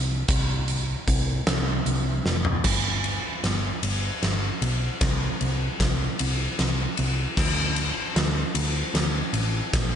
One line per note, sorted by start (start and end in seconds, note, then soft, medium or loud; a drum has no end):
0.00 0.22 C2 medium
0.28 0.95 C2 medium
0.28 kick loud
0.28 closed hi-hat loud
0.68 closed hi-hat medium
1.07 1.41 C2 medium
1.07 kick medium
1.07 closed hi-hat medium
1.47 1.80 C2 medium
1.47 snare loud
1.47 closed hi-hat medium
1.86 2.19 C2 medium
1.86 closed hi-hat medium
2.26 2.59 F1 medium
2.26 snare medium
2.45 floor tom medium
2.64 3.18 G1 medium
2.64 kick medium
2.64 snare soft
2.64 crash loud
3.04 ride medium
3.43 3.70 G1 medium
3.43 snare soft
3.43 ride medium
3.83 4.09 G1 medium
3.83 ride medium
4.23 4.49 G1 medium
4.23 snare soft
4.23 ride medium
4.62 4.88 B1 medium
4.62 ride medium
5.01 5.28 C2 medium
5.01 kick loud
5.01 snare medium
5.01 ride medium
5.41 5.67 C2 medium
5.41 ride medium
5.80 6.07 C2 medium
5.80 kick medium
5.80 snare medium
5.80 ride medium
6.19 6.47 C2 medium
6.19 ride medium
6.59 6.86 C2 medium
6.59 snare medium
6.59 ride medium
6.97 7.25 C2 medium
6.97 ride medium
7.37 7.90 D2 medium
7.37 kick loud
7.37 snare medium
7.37 crash loud
7.76 ride medium
8.16 8.43 D2 medium
8.16 snare medium
8.16 ride medium
8.55 8.82 D2 medium
8.55 ride medium
8.94 9.21 D2 medium
8.94 snare medium
8.94 ride medium
9.33 9.60 A1 medium
9.33 ride medium
9.74 9.96 A#1 medium
9.74 kick loud
9.74 snare medium
9.74 ride medium